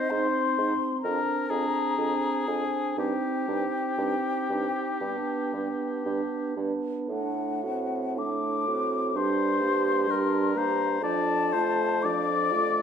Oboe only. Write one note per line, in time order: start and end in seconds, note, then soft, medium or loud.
0.00 0.75 C5 medium
1.04 1.51 A#4 soft
1.50 2.98 G#4 soft
2.99 6.54 G4 soft
9.16 10.13 C5 soft
10.11 10.60 A#4 soft
10.58 11.03 C5 soft
11.03 11.54 D5 medium
11.53 12.07 C5 medium
12.05 12.82 D5 medium